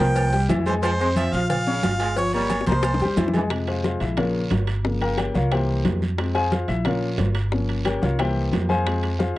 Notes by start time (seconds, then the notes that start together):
0.00 C2 F3 A#3 A#4 G5 A#5
0.16 cowbell, high conga, low agogo, long guiro, maracas
0.33 G3 G4 G5, cowbell, high conga, maracas
0.49 F2 E3 E4 E5, cowbell, high conga, low timbale, low agogo, short guiro, maracas
0.66 E3 G#3 G#4 C5 G#5, high conga, low agogo, short guiro, maracas
0.82 F3 C5, cowbell, high conga, low agogo, long guiro, maracas
0.99 G#3 C4 C5 C6, high conga, maracas
1.16 F3 E5, cowbell, high conga, low timbale, low agogo, short guiro, maracas
1.33 A#1 F4 F5 F6, high conga, short guiro, maracas
1.49 F5, cowbell, high conga, low conga, low agogo, long guiro, maracas
1.66 C#3 C#4 C#5 C#6, high conga, maracas
1.83 G1 F4 F5 F6, cowbell, high conga, low timbale, low agogo, short guiro, maracas
1.99 G#3, cowbell, high conga, low agogo, short guiro, maracas
2.16 F3 F4 C#5 F5, cowbell, high conga, long guiro, maracas
2.33 G3 A#3 A#4 C#5 A#5, high conga, low agogo, maracas
2.50 cowbell, high bongo, high conga, low timbale, low agogo, short guiro, maracas
2.61 high bongo
2.67 C2 F3 A#3 A#4 C5 A#5, cowbell, high conga, short guiro, maracas
2.72 high bongo
2.83 cowbell, high bongo, high conga, low agogo, long guiro, maracas
2.94 low bongo
3.00 E2 G3 G4 G5, cowbell, high conga, maracas
3.05 low bongo
3.17 F2 E3 E4 E5, cowbell, low bongo, high conga, low timbale, low agogo, short guiro, maracas
3.28 low bongo
3.34 E3 G#3 G#4 G#5, high conga, low agogo, short guiro, maracas
3.39 low bongo
3.50 C3 F3 G#3, high bongo, high conga, high timbale, long guiro
3.67 G#4 C5 F5 G#5, high bongo, high conga, high timbale
3.84 F4 G#4 C5 F5, high bongo, high conga, low timbale, short guiro
4.00 A#1 E4 E5, high bongo, high conga, high timbale, short guiro
4.17 C#3 F3 A#3 F4 A#4 C#5 F5, high bongo, high conga, low conga, high timbale, long guiro
4.35 high conga
4.51 G1, high bongo, low bongo, high conga, high timbale, low timbale, short guiro
4.67 high bongo, high conga, high timbale, short guiro
4.84 C#3 F3 A#3, high bongo, high conga, long guiro
5.01 A#4 F5 G5 A#5, high bongo, high conga, high timbale
5.18 G4 A#4 C#5 G5, high bongo, high conga, high timbale, low timbale, short guiro
5.34 C2 F4 A#4 C#5 F5, high bongo, high conga, short guiro
5.51 E3 G3 A#3 G4 C5 E5 G5, high bongo, high timbale, long guiro
5.69 high conga
5.85 F2, high bongo, low bongo, high conga, high timbale, low timbale, short guiro
6.02 high bongo, high conga, short guiro
6.18 F3 G#3 C4, high bongo, high conga, high timbale, long guiro
6.35 G#4 C5 F5 G#5, high bongo, high conga, high timbale
6.52 F4 G#4 C5 F5, high bongo, high conga, low timbale, short guiro
6.68 A#1 E4 E5, high bongo, high conga, high timbale, short guiro
6.85 F3 A#3 C#4 F4 A#4 C#5 F5, high bongo, high conga, low conga, high timbale, long guiro
7.03 high conga
7.18 G1, high bongo, low bongo, high conga, high timbale, low timbale, short guiro
7.35 high bongo, high timbale, short guiro
7.52 F3 A#3 C#4, high bongo, high conga, long guiro
7.69 high bongo, high conga, high timbale
7.85 G4 A#4 C#5 G5, high bongo, high conga, high timbale, low timbale, short guiro
8.02 C2 F4 A#4 C#5 F5, high bongo, high conga, short guiro
8.19 E3 G3 A#3 G4 C5 E5 G5, high bongo, high conga, high timbale, long guiro
8.36 high conga
8.52 F2, high bongo, low bongo, high conga, high timbale, low timbale, short guiro
8.69 G#4 C5 F5 G#5, high bongo, high conga, short guiro
8.86 F3 G#3 C4, high bongo, high conga, high timbale, long guiro
9.03 high bongo, high conga, high timbale
9.19 F4 G#4 C5 F5, high bongo, high conga, low timbale, short guiro